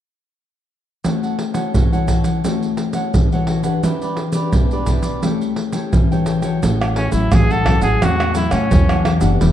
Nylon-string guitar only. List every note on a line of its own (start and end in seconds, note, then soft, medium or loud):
1.05 1.71 A3 medium
1.05 1.52 E4 soft
1.05 1.52 F#4 soft
1.05 1.52 C#5 soft
1.54 1.85 E4 medium
1.54 1.85 F#4 medium
1.54 1.85 C#5 medium
1.74 2.41 E3 medium
1.92 2.39 E4 medium
1.92 2.39 F#4 medium
1.92 2.39 C#5 medium
2.44 3.11 A3 medium
2.44 2.91 E4 medium
2.44 2.91 F#4 medium
2.44 2.92 C#5 medium
2.94 3.25 E4 medium
2.94 3.25 F#4 medium
2.94 3.25 C#5 medium
3.14 3.81 E3 medium
3.33 3.62 E4 medium
3.33 3.62 F#4 medium
3.33 3.62 C#5 medium
3.64 4.30 D4 medium
3.64 4.30 G4 medium
3.64 4.30 B4 medium
3.85 4.51 E3 medium
4.34 4.65 D4 medium
4.34 4.65 G4 medium
4.34 4.65 B4 medium
4.54 5.20 B2 medium
4.72 5.18 D4 medium
4.72 5.19 G4 medium
4.72 5.19 B4 medium
5.24 5.90 A3 medium
5.24 5.70 E4 medium
5.24 5.71 G4 medium
5.24 5.71 C#5 medium
5.74 6.04 E4 medium
5.74 6.04 G4 medium
5.74 6.05 C#5 medium
5.94 6.60 E3 medium
6.12 6.41 E4 medium
6.12 6.41 G4 medium
6.12 6.41 C#5 medium
6.43 7.08 E4 medium
6.43 7.09 F#4 medium
6.43 7.09 C#5 medium
6.63 7.29 A2 medium
7.12 7.60 F#3 medium
7.12 7.61 C#4 medium
7.12 7.61 E4 medium
7.33 7.99 E3 medium
7.66 8.12 F#3 medium
7.66 8.12 C#4 medium
7.66 8.12 E4 medium
8.02 8.69 A2 medium
8.35 8.57 F#3 medium
8.35 8.57 C#4 medium
8.35 8.57 E4 medium
8.72 9.38 E3 medium
8.72 9.18 F#3 medium
8.72 9.19 C#4 medium
8.72 9.19 E4 medium
9.21 9.52 B3 medium
9.21 9.52 D4 medium
9.21 9.52 G4 medium
9.41 9.52 E3 medium